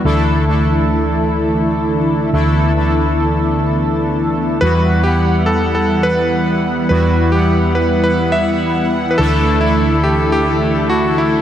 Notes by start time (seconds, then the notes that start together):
Already playing: E3
0.05 D2 D3 A3 D4 E4 A4
0.48 A3 D4 E4 A4
2.33 D2 A3 B3 D4 E4 A4
2.76 A3 D4 E4 A4
4.61 E2 E3 G3 B3 E4 F#4 B4 F#5
5.04 G3 B3 E4 G4 F#5
5.46 A4
5.75 A4
6.03 B4
6.89 E2 G3 B3 E4 F#4 B4
7.32 G3 B3 E4 G4 F#5
7.75 B4
8.04 B4
8.32 E5
9.11 B4
9.18 D2 D3 A3 D4 E4 A4
9.61 A3 D4 E4 A4
10.04 G4
10.32 G4
10.90 F#4
11.18 E4